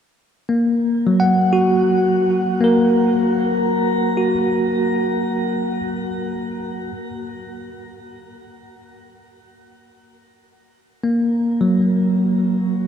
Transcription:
0, 0, Header, 1, 2, 480
1, 0, Start_track
1, 0, Tempo, 500000
1, 12358, End_track
2, 0, Start_track
2, 0, Title_t, "Tine electric piano"
2, 0, Program_c, 0, 4
2, 0, Control_c, 0, 64, 127
2, 470, Note_on_c, 0, 58, 47
2, 1024, Note_on_c, 0, 54, 50
2, 1150, Note_on_c, 0, 78, 64
2, 1175, Note_off_c, 0, 58, 0
2, 1466, Note_on_c, 0, 66, 61
2, 2501, Note_on_c, 0, 58, 55
2, 2534, Note_on_c, 0, 70, 47
2, 2648, Note_off_c, 0, 54, 0
2, 2691, Note_off_c, 0, 78, 0
2, 3005, Note_off_c, 0, 66, 0
2, 4006, Note_on_c, 0, 66, 44
2, 4050, Note_off_c, 0, 58, 0
2, 4159, Note_off_c, 0, 70, 0
2, 5564, Note_off_c, 0, 66, 0
2, 6635, Control_c, 0, 64, 0
2, 6815, Control_c, 0, 64, 127
2, 10594, Note_on_c, 0, 58, 45
2, 11144, Note_on_c, 0, 54, 44
2, 11297, Note_off_c, 0, 58, 0
2, 12358, Note_off_c, 0, 54, 0
2, 12358, End_track
0, 0, End_of_file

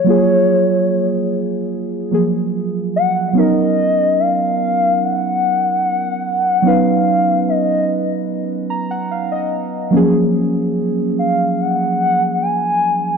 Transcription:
0, 0, Header, 1, 3, 480
1, 0, Start_track
1, 0, Tempo, 821918
1, 40, Time_signature, 4, 2, 24, 8
1, 7694, End_track
2, 0, Start_track
2, 0, Title_t, "Soft synth lead"
2, 0, Program_c, 0, 80
2, 0, Note_on_c, 0, 73, 88
2, 1485, Note_off_c, 0, 73, 0
2, 1728, Note_on_c, 0, 78, 113
2, 1948, Note_off_c, 0, 78, 0
2, 1969, Note_on_c, 0, 75, 113
2, 2450, Note_on_c, 0, 77, 113
2, 2459, Note_off_c, 0, 75, 0
2, 2931, Note_on_c, 0, 78, 121
2, 2940, Note_off_c, 0, 77, 0
2, 3893, Note_on_c, 0, 77, 105
2, 3902, Note_off_c, 0, 78, 0
2, 4367, Note_off_c, 0, 77, 0
2, 4373, Note_on_c, 0, 75, 86
2, 4823, Note_off_c, 0, 75, 0
2, 6534, Note_on_c, 0, 77, 89
2, 6778, Note_on_c, 0, 78, 101
2, 6787, Note_off_c, 0, 77, 0
2, 7249, Note_off_c, 0, 78, 0
2, 7254, Note_on_c, 0, 80, 107
2, 7694, Note_off_c, 0, 80, 0
2, 7694, End_track
3, 0, Start_track
3, 0, Title_t, "Synth keys"
3, 0, Program_c, 1, 88
3, 0, Control_c, 1, 64, 127
3, 25, Note_on_c, 1, 54, 79
3, 37, Note_on_c, 1, 58, 73
3, 47, Note_on_c, 1, 65, 72
3, 59, Note_on_c, 1, 68, 91
3, 1209, Note_off_c, 1, 54, 0
3, 1215, Note_off_c, 1, 58, 0
3, 1220, Note_off_c, 1, 65, 0
3, 1226, Note_off_c, 1, 68, 0
3, 1234, Note_on_c, 1, 54, 61
3, 1240, Note_on_c, 1, 58, 53
3, 1245, Note_on_c, 1, 53, 54
3, 1251, Note_on_c, 1, 68, 62
3, 1939, Note_off_c, 1, 54, 0
3, 1946, Note_on_c, 1, 54, 69
3, 1954, Note_on_c, 1, 59, 61
3, 1960, Note_off_c, 1, 58, 0
3, 1963, Note_off_c, 1, 53, 0
3, 1963, Note_on_c, 1, 61, 60
3, 1966, Note_off_c, 1, 68, 0
3, 1967, Control_c, 1, 64, 0
3, 1972, Note_on_c, 1, 63, 60
3, 1978, Note_on_c, 1, 70, 75
3, 2084, Control_c, 1, 64, 127
3, 3849, Note_off_c, 1, 54, 0
3, 3853, Note_off_c, 1, 59, 0
3, 3858, Note_off_c, 1, 61, 0
3, 3862, Note_off_c, 1, 63, 0
3, 3866, Note_off_c, 1, 70, 0
3, 3867, Note_on_c, 1, 54, 65
3, 3875, Note_on_c, 1, 59, 62
3, 3883, Note_on_c, 1, 61, 65
3, 3892, Note_on_c, 1, 63, 64
3, 3900, Note_on_c, 1, 71, 76
3, 5081, Note_on_c, 1, 82, 75
3, 5192, Note_off_c, 1, 82, 0
3, 5202, Note_on_c, 1, 78, 74
3, 5313, Note_off_c, 1, 78, 0
3, 5323, Note_on_c, 1, 77, 75
3, 5433, Note_off_c, 1, 77, 0
3, 5442, Note_on_c, 1, 75, 76
3, 5770, Note_off_c, 1, 54, 0
3, 5774, Note_off_c, 1, 59, 0
3, 5777, Note_off_c, 1, 75, 0
3, 5778, Note_off_c, 1, 61, 0
3, 5783, Note_off_c, 1, 63, 0
3, 5785, Note_on_c, 1, 54, 78
3, 5787, Note_off_c, 1, 71, 0
3, 5794, Note_on_c, 1, 58, 75
3, 5802, Note_on_c, 1, 61, 75
3, 5806, Control_c, 1, 64, 0
3, 5811, Note_on_c, 1, 53, 76
3, 5819, Note_on_c, 1, 68, 91
3, 5893, Control_c, 1, 64, 127
3, 7689, Note_off_c, 1, 54, 0
3, 7694, Note_off_c, 1, 53, 0
3, 7694, Note_off_c, 1, 58, 0
3, 7694, Note_off_c, 1, 61, 0
3, 7694, Note_off_c, 1, 68, 0
3, 7694, End_track
0, 0, End_of_file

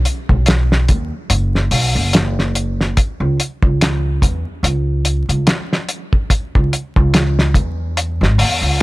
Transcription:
0, 0, Header, 1, 3, 480
1, 0, Start_track
1, 0, Key_signature, 4, "minor"
1, 0, Tempo, 833333
1, 1710, Time_signature, 4, 2, 24, 8
1, 5083, End_track
2, 0, Start_track
2, 0, Title_t, "Upright bass"
2, 0, Program_c, 0, 32
2, 170, Note_on_c, 0, 35, 93
2, 491, Note_off_c, 0, 35, 0
2, 514, Note_on_c, 0, 39, 87
2, 633, Note_off_c, 0, 39, 0
2, 748, Note_on_c, 0, 30, 94
2, 964, Note_off_c, 0, 30, 0
2, 985, Note_on_c, 0, 35, 90
2, 1109, Note_off_c, 0, 35, 0
2, 1124, Note_on_c, 0, 30, 91
2, 1688, Note_off_c, 0, 30, 0
2, 1844, Note_on_c, 0, 37, 89
2, 1936, Note_off_c, 0, 37, 0
2, 2088, Note_on_c, 0, 37, 88
2, 2410, Note_off_c, 0, 37, 0
2, 2431, Note_on_c, 0, 40, 90
2, 2552, Note_off_c, 0, 40, 0
2, 2666, Note_on_c, 0, 37, 93
2, 3019, Note_off_c, 0, 37, 0
2, 3045, Note_on_c, 0, 37, 76
2, 3136, Note_off_c, 0, 37, 0
2, 3773, Note_on_c, 0, 37, 94
2, 3860, Note_off_c, 0, 37, 0
2, 4011, Note_on_c, 0, 37, 96
2, 4332, Note_off_c, 0, 37, 0
2, 4346, Note_on_c, 0, 40, 91
2, 4728, Note_on_c, 0, 32, 89
2, 4737, Note_off_c, 0, 40, 0
2, 4827, Note_on_c, 0, 40, 104
2, 4836, Note_off_c, 0, 32, 0
2, 4950, Note_off_c, 0, 40, 0
2, 4962, Note_on_c, 0, 37, 85
2, 5083, Note_off_c, 0, 37, 0
2, 5083, End_track
3, 0, Start_track
3, 0, Title_t, "Drums"
3, 30, Note_on_c, 9, 42, 58
3, 88, Note_off_c, 9, 42, 0
3, 169, Note_on_c, 9, 36, 83
3, 227, Note_off_c, 9, 36, 0
3, 265, Note_on_c, 9, 42, 84
3, 279, Note_on_c, 9, 38, 103
3, 323, Note_off_c, 9, 42, 0
3, 336, Note_off_c, 9, 38, 0
3, 414, Note_on_c, 9, 38, 52
3, 472, Note_off_c, 9, 38, 0
3, 509, Note_on_c, 9, 42, 57
3, 512, Note_on_c, 9, 36, 90
3, 567, Note_off_c, 9, 42, 0
3, 569, Note_off_c, 9, 36, 0
3, 747, Note_on_c, 9, 42, 80
3, 805, Note_off_c, 9, 42, 0
3, 895, Note_on_c, 9, 38, 31
3, 952, Note_off_c, 9, 38, 0
3, 986, Note_on_c, 9, 46, 85
3, 1043, Note_off_c, 9, 46, 0
3, 1229, Note_on_c, 9, 42, 80
3, 1238, Note_on_c, 9, 38, 98
3, 1286, Note_off_c, 9, 42, 0
3, 1295, Note_off_c, 9, 38, 0
3, 1376, Note_on_c, 9, 38, 34
3, 1434, Note_off_c, 9, 38, 0
3, 1471, Note_on_c, 9, 42, 64
3, 1528, Note_off_c, 9, 42, 0
3, 1616, Note_on_c, 9, 38, 33
3, 1673, Note_off_c, 9, 38, 0
3, 1711, Note_on_c, 9, 42, 73
3, 1712, Note_on_c, 9, 36, 92
3, 1768, Note_off_c, 9, 42, 0
3, 1770, Note_off_c, 9, 36, 0
3, 1957, Note_on_c, 9, 42, 61
3, 2014, Note_off_c, 9, 42, 0
3, 2088, Note_on_c, 9, 36, 92
3, 2146, Note_off_c, 9, 36, 0
3, 2197, Note_on_c, 9, 42, 86
3, 2203, Note_on_c, 9, 38, 108
3, 2255, Note_off_c, 9, 42, 0
3, 2261, Note_off_c, 9, 38, 0
3, 2431, Note_on_c, 9, 36, 95
3, 2434, Note_on_c, 9, 42, 66
3, 2489, Note_off_c, 9, 36, 0
3, 2492, Note_off_c, 9, 42, 0
3, 2673, Note_on_c, 9, 42, 76
3, 2731, Note_off_c, 9, 42, 0
3, 2908, Note_on_c, 9, 42, 64
3, 2966, Note_off_c, 9, 42, 0
3, 3049, Note_on_c, 9, 42, 37
3, 3107, Note_off_c, 9, 42, 0
3, 3150, Note_on_c, 9, 42, 70
3, 3154, Note_on_c, 9, 38, 112
3, 3207, Note_off_c, 9, 42, 0
3, 3212, Note_off_c, 9, 38, 0
3, 3298, Note_on_c, 9, 38, 41
3, 3356, Note_off_c, 9, 38, 0
3, 3390, Note_on_c, 9, 42, 67
3, 3448, Note_off_c, 9, 42, 0
3, 3529, Note_on_c, 9, 36, 93
3, 3587, Note_off_c, 9, 36, 0
3, 3629, Note_on_c, 9, 36, 92
3, 3631, Note_on_c, 9, 42, 85
3, 3686, Note_off_c, 9, 36, 0
3, 3688, Note_off_c, 9, 42, 0
3, 3774, Note_on_c, 9, 36, 93
3, 3832, Note_off_c, 9, 36, 0
3, 3876, Note_on_c, 9, 42, 68
3, 3934, Note_off_c, 9, 42, 0
3, 4011, Note_on_c, 9, 36, 98
3, 4068, Note_off_c, 9, 36, 0
3, 4111, Note_on_c, 9, 42, 86
3, 4116, Note_on_c, 9, 38, 108
3, 4169, Note_off_c, 9, 42, 0
3, 4174, Note_off_c, 9, 38, 0
3, 4256, Note_on_c, 9, 38, 49
3, 4313, Note_off_c, 9, 38, 0
3, 4346, Note_on_c, 9, 36, 83
3, 4349, Note_on_c, 9, 42, 59
3, 4403, Note_off_c, 9, 36, 0
3, 4406, Note_off_c, 9, 42, 0
3, 4591, Note_on_c, 9, 42, 80
3, 4649, Note_off_c, 9, 42, 0
3, 4740, Note_on_c, 9, 38, 41
3, 4798, Note_off_c, 9, 38, 0
3, 4832, Note_on_c, 9, 46, 76
3, 4890, Note_off_c, 9, 46, 0
3, 5083, End_track
0, 0, End_of_file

